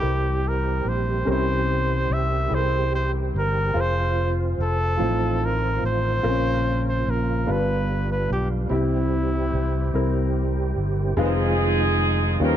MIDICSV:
0, 0, Header, 1, 6, 480
1, 0, Start_track
1, 0, Tempo, 828729
1, 738, Time_signature, 6, 3, 24, 8
1, 4097, Tempo, 821918
1, 7306, End_track
2, 0, Start_track
2, 0, Title_t, "Trumpet"
2, 0, Program_c, 0, 56
2, 0, Note_on_c, 0, 67, 88
2, 279, Note_on_c, 0, 70, 69
2, 288, Note_off_c, 0, 67, 0
2, 513, Note_on_c, 0, 72, 68
2, 521, Note_off_c, 0, 70, 0
2, 746, Note_off_c, 0, 72, 0
2, 758, Note_on_c, 0, 72, 81
2, 1232, Note_on_c, 0, 76, 77
2, 1241, Note_off_c, 0, 72, 0
2, 1474, Note_on_c, 0, 72, 84
2, 1482, Note_off_c, 0, 76, 0
2, 1706, Note_off_c, 0, 72, 0
2, 1709, Note_on_c, 0, 72, 68
2, 1802, Note_off_c, 0, 72, 0
2, 1961, Note_on_c, 0, 70, 77
2, 2204, Note_on_c, 0, 72, 80
2, 2213, Note_off_c, 0, 70, 0
2, 2513, Note_off_c, 0, 72, 0
2, 2677, Note_on_c, 0, 69, 84
2, 3156, Note_on_c, 0, 70, 74
2, 3165, Note_off_c, 0, 69, 0
2, 3386, Note_off_c, 0, 70, 0
2, 3394, Note_on_c, 0, 72, 86
2, 3960, Note_off_c, 0, 72, 0
2, 3989, Note_on_c, 0, 72, 72
2, 4113, Note_on_c, 0, 70, 73
2, 4122, Note_off_c, 0, 72, 0
2, 4357, Note_on_c, 0, 71, 70
2, 4365, Note_off_c, 0, 70, 0
2, 4705, Note_off_c, 0, 71, 0
2, 4709, Note_on_c, 0, 71, 64
2, 4815, Note_off_c, 0, 71, 0
2, 4828, Note_on_c, 0, 67, 66
2, 4921, Note_off_c, 0, 67, 0
2, 5075, Note_on_c, 0, 64, 71
2, 6003, Note_off_c, 0, 64, 0
2, 7306, End_track
3, 0, Start_track
3, 0, Title_t, "Horn section"
3, 0, Program_c, 1, 61
3, 6504, Note_on_c, 1, 60, 64
3, 6506, Note_on_c, 1, 63, 66
3, 6507, Note_on_c, 1, 68, 90
3, 7194, Note_off_c, 1, 60, 0
3, 7195, Note_off_c, 1, 63, 0
3, 7195, Note_off_c, 1, 68, 0
3, 7225, Note_on_c, 1, 67, 82
3, 7226, Note_on_c, 1, 61, 74
3, 7233, Note_on_c, 1, 70, 109
3, 7306, Note_off_c, 1, 61, 0
3, 7306, Note_off_c, 1, 67, 0
3, 7306, Note_off_c, 1, 70, 0
3, 7306, End_track
4, 0, Start_track
4, 0, Title_t, "Grand piano"
4, 0, Program_c, 2, 0
4, 0, Control_c, 2, 64, 127
4, 0, Note_on_c, 2, 48, 52
4, 0, Note_on_c, 2, 64, 52
4, 0, Note_on_c, 2, 67, 54
4, 0, Note_on_c, 2, 72, 77
4, 7, Note_off_c, 2, 67, 0
4, 7, Note_on_c, 2, 67, 46
4, 11, Note_on_c, 2, 70, 53
4, 568, Note_off_c, 2, 64, 0
4, 571, Note_off_c, 2, 67, 0
4, 573, Note_off_c, 2, 70, 0
4, 724, Note_on_c, 2, 61, 51
4, 731, Note_off_c, 2, 48, 0
4, 731, Note_on_c, 2, 48, 53
4, 732, Note_on_c, 2, 67, 54
4, 736, Note_on_c, 2, 70, 68
4, 763, Note_on_c, 2, 64, 62
4, 769, Note_off_c, 2, 61, 0
4, 1294, Note_off_c, 2, 67, 0
4, 1296, Note_off_c, 2, 70, 0
4, 1310, Note_off_c, 2, 64, 0
4, 1432, Note_off_c, 2, 48, 0
4, 1444, Note_on_c, 2, 64, 54
4, 1450, Note_on_c, 2, 67, 48
4, 1454, Note_on_c, 2, 68, 43
4, 1495, Note_off_c, 2, 68, 0
4, 1495, Note_on_c, 2, 70, 55
4, 2010, Note_off_c, 2, 64, 0
4, 2013, Note_off_c, 2, 67, 0
4, 2035, Note_off_c, 2, 70, 0
4, 2166, Note_on_c, 2, 65, 68
4, 2171, Note_on_c, 2, 68, 59
4, 2177, Note_off_c, 2, 72, 0
4, 2177, Note_on_c, 2, 72, 66
4, 2187, Control_c, 2, 64, 0
4, 2270, Control_c, 2, 64, 127
4, 2730, Note_off_c, 2, 65, 0
4, 2733, Note_off_c, 2, 68, 0
4, 2736, Note_off_c, 2, 72, 0
4, 2880, Note_on_c, 2, 53, 54
4, 2883, Note_on_c, 2, 60, 52
4, 2887, Note_on_c, 2, 63, 49
4, 2889, Note_on_c, 2, 45, 52
4, 2892, Note_on_c, 2, 72, 62
4, 2893, Note_on_c, 2, 65, 51
4, 2907, Control_c, 2, 64, 0
4, 3000, Control_c, 2, 64, 127
4, 3446, Note_off_c, 2, 53, 0
4, 3448, Note_off_c, 2, 60, 0
4, 3450, Note_off_c, 2, 63, 0
4, 3452, Note_off_c, 2, 72, 0
4, 3453, Note_off_c, 2, 65, 0
4, 3589, Note_off_c, 2, 45, 0
4, 3607, Note_on_c, 2, 60, 54
4, 3610, Note_on_c, 2, 65, 66
4, 3612, Note_on_c, 2, 46, 50
4, 3616, Note_on_c, 2, 70, 72
4, 3625, Control_c, 2, 64, 0
4, 3643, Note_on_c, 2, 61, 67
4, 3650, Note_off_c, 2, 60, 0
4, 3723, Control_c, 2, 64, 127
4, 4170, Note_off_c, 2, 65, 0
4, 4173, Note_off_c, 2, 70, 0
4, 4187, Note_off_c, 2, 61, 0
4, 4310, Note_off_c, 2, 46, 0
4, 4324, Note_on_c, 2, 55, 55
4, 4327, Note_on_c, 2, 59, 52
4, 4331, Note_on_c, 2, 62, 51
4, 4332, Note_on_c, 2, 43, 55
4, 4333, Note_on_c, 2, 65, 48
4, 4337, Note_on_c, 2, 71, 62
4, 4342, Control_c, 2, 64, 0
4, 4455, Control_c, 2, 64, 127
4, 4890, Note_off_c, 2, 55, 0
4, 4891, Note_off_c, 2, 59, 0
4, 4893, Note_off_c, 2, 62, 0
4, 4894, Note_off_c, 2, 65, 0
4, 4896, Note_off_c, 2, 71, 0
4, 5032, Note_off_c, 2, 43, 0
4, 5042, Note_on_c, 2, 60, 62
4, 5047, Note_on_c, 2, 64, 63
4, 5048, Note_on_c, 2, 48, 52
4, 5054, Note_on_c, 2, 67, 72
4, 5066, Control_c, 2, 64, 0
4, 5171, Control_c, 2, 64, 127
4, 5608, Note_off_c, 2, 60, 0
4, 5611, Note_off_c, 2, 64, 0
4, 5614, Note_off_c, 2, 67, 0
4, 5749, Note_off_c, 2, 48, 0
4, 5769, Note_on_c, 2, 60, 63
4, 5774, Note_on_c, 2, 64, 58
4, 5779, Note_on_c, 2, 70, 71
4, 6331, Note_off_c, 2, 60, 0
4, 6333, Note_off_c, 2, 64, 0
4, 6336, Note_off_c, 2, 70, 0
4, 6489, Note_on_c, 2, 56, 81
4, 6492, Note_on_c, 2, 60, 67
4, 6493, Note_on_c, 2, 63, 78
4, 6499, Note_on_c, 2, 65, 72
4, 6500, Note_on_c, 2, 71, 70
4, 6504, Control_c, 2, 64, 0
4, 6536, Note_off_c, 2, 71, 0
4, 6539, Note_on_c, 2, 72, 81
4, 6605, Control_c, 2, 64, 127
4, 7049, Note_off_c, 2, 56, 0
4, 7050, Note_off_c, 2, 60, 0
4, 7051, Note_off_c, 2, 63, 0
4, 7054, Note_off_c, 2, 65, 0
4, 7074, Note_off_c, 2, 72, 0
4, 7207, Note_on_c, 2, 55, 68
4, 7208, Note_on_c, 2, 61, 61
4, 7213, Note_on_c, 2, 51, 62
4, 7213, Note_on_c, 2, 63, 58
4, 7215, Note_on_c, 2, 65, 63
4, 7220, Note_on_c, 2, 71, 62
4, 7221, Control_c, 2, 64, 0
4, 7255, Note_off_c, 2, 71, 0
4, 7259, Note_on_c, 2, 72, 73
4, 7306, Note_off_c, 2, 51, 0
4, 7306, Note_off_c, 2, 55, 0
4, 7306, Note_off_c, 2, 61, 0
4, 7306, Note_off_c, 2, 63, 0
4, 7306, Note_off_c, 2, 65, 0
4, 7306, Note_off_c, 2, 72, 0
4, 7306, End_track
5, 0, Start_track
5, 0, Title_t, "Tonewheel organ"
5, 0, Program_c, 3, 16
5, 0, Note_on_c, 3, 52, 57
5, 0, Note_on_c, 3, 55, 49
5, 0, Note_on_c, 3, 60, 50
5, 0, Note_on_c, 3, 67, 64
5, 2150, Note_off_c, 3, 55, 0
5, 2151, Note_off_c, 3, 52, 0
5, 2152, Note_off_c, 3, 67, 0
5, 2169, Note_on_c, 3, 53, 52
5, 2169, Note_on_c, 3, 65, 64
5, 2886, Note_off_c, 3, 53, 0
5, 2886, Note_off_c, 3, 65, 0
5, 2896, Note_on_c, 3, 53, 50
5, 2897, Note_on_c, 3, 65, 64
5, 2900, Note_on_c, 3, 51, 64
5, 3588, Note_off_c, 3, 60, 0
5, 3608, Note_off_c, 3, 53, 0
5, 3610, Note_off_c, 3, 51, 0
5, 3621, Note_on_c, 3, 53, 59
5, 3623, Note_on_c, 3, 58, 55
5, 3625, Note_on_c, 3, 49, 61
5, 4326, Note_on_c, 3, 50, 59
5, 4326, Note_on_c, 3, 55, 51
5, 4330, Note_on_c, 3, 59, 57
5, 4331, Note_off_c, 3, 53, 0
5, 4332, Note_off_c, 3, 58, 0
5, 4333, Note_off_c, 3, 49, 0
5, 5035, Note_off_c, 3, 65, 0
5, 5044, Note_on_c, 3, 52, 60
5, 5045, Note_on_c, 3, 67, 67
5, 5046, Note_off_c, 3, 50, 0
5, 5047, Note_off_c, 3, 59, 0
5, 5047, Note_on_c, 3, 60, 50
5, 6469, Note_off_c, 3, 55, 0
5, 6475, Note_off_c, 3, 52, 0
5, 6475, Note_off_c, 3, 67, 0
5, 6477, Note_off_c, 3, 60, 0
5, 6487, Note_on_c, 3, 51, 62
5, 6487, Note_on_c, 3, 65, 74
5, 6492, Note_on_c, 3, 56, 59
5, 6493, Note_on_c, 3, 63, 62
5, 7202, Note_off_c, 3, 51, 0
5, 7202, Note_off_c, 3, 65, 0
5, 7204, Note_off_c, 3, 56, 0
5, 7211, Note_on_c, 3, 61, 65
5, 7213, Note_on_c, 3, 53, 67
5, 7213, Note_on_c, 3, 67, 75
5, 7306, Note_off_c, 3, 53, 0
5, 7306, Note_off_c, 3, 61, 0
5, 7306, Note_off_c, 3, 63, 0
5, 7306, Note_off_c, 3, 67, 0
5, 7306, End_track
6, 0, Start_track
6, 0, Title_t, "Fingered electric bass"
6, 0, Program_c, 4, 33
6, 17, Note_on_c, 4, 36, 65
6, 474, Note_off_c, 4, 36, 0
6, 493, Note_on_c, 4, 34, 61
6, 716, Note_off_c, 4, 34, 0
6, 736, Note_on_c, 4, 36, 74
6, 1195, Note_off_c, 4, 36, 0
6, 1216, Note_on_c, 4, 36, 72
6, 1438, Note_off_c, 4, 36, 0
6, 1454, Note_on_c, 4, 36, 77
6, 1913, Note_off_c, 4, 36, 0
6, 1937, Note_on_c, 4, 31, 68
6, 2158, Note_off_c, 4, 31, 0
6, 2171, Note_on_c, 4, 29, 82
6, 2631, Note_off_c, 4, 29, 0
6, 2654, Note_on_c, 4, 29, 73
6, 2876, Note_off_c, 4, 29, 0
6, 2896, Note_on_c, 4, 33, 93
6, 3353, Note_off_c, 4, 33, 0
6, 3376, Note_on_c, 4, 33, 74
6, 3597, Note_off_c, 4, 33, 0
6, 3616, Note_on_c, 4, 34, 79
6, 4071, Note_off_c, 4, 34, 0
6, 4094, Note_on_c, 4, 34, 69
6, 4316, Note_off_c, 4, 34, 0
6, 4334, Note_on_c, 4, 31, 88
6, 4793, Note_off_c, 4, 31, 0
6, 4816, Note_on_c, 4, 35, 76
6, 5038, Note_off_c, 4, 35, 0
6, 5051, Note_on_c, 4, 36, 84
6, 5511, Note_off_c, 4, 36, 0
6, 5535, Note_on_c, 4, 36, 76
6, 5757, Note_off_c, 4, 36, 0
6, 5771, Note_on_c, 4, 36, 79
6, 6230, Note_off_c, 4, 36, 0
6, 6251, Note_on_c, 4, 31, 69
6, 6474, Note_off_c, 4, 31, 0
6, 6489, Note_on_c, 4, 29, 101
6, 7186, Note_off_c, 4, 29, 0
6, 7208, Note_on_c, 4, 39, 99
6, 7306, Note_off_c, 4, 39, 0
6, 7306, End_track
0, 0, End_of_file